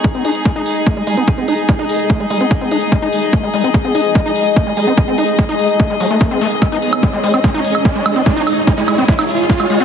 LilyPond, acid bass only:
\new Staff \with { instrumentName = "Acid bass" } { \clef bass \time 4/4 \tempo 4 = 146 gis16 bis16 dis'16 r16 gis16 dis'16 r8 a16 gis16 gis16 bis16 gis16 bis16 dis'16 r16 | gis16 dis'16 r8 a16 gis16 gis16 bis16 gis16 bis16 dis'16 r16 gis16 dis'16 r8 | a16 gis16 gis16 bis16 gis16 bis16 dis'16 r16 gis16 dis'16 r8 a16 gis16 gis16 bis16 | gis16 bis16 dis'16 r16 gis16 dis'16 r8 a16 gis16 fis16 a16 a16 bis16 a16 r16 |
gis16 dis'16 r8 gis16 gis16 gis16 bis16 gis16 dis'16 r8 gis16 gis16 gis16 bis16 | gis16 dis'16 r8 gis16 gis16 gis16 bis16 gis16 dis'16 r8 gis16 gis16 gis16 bis16 | }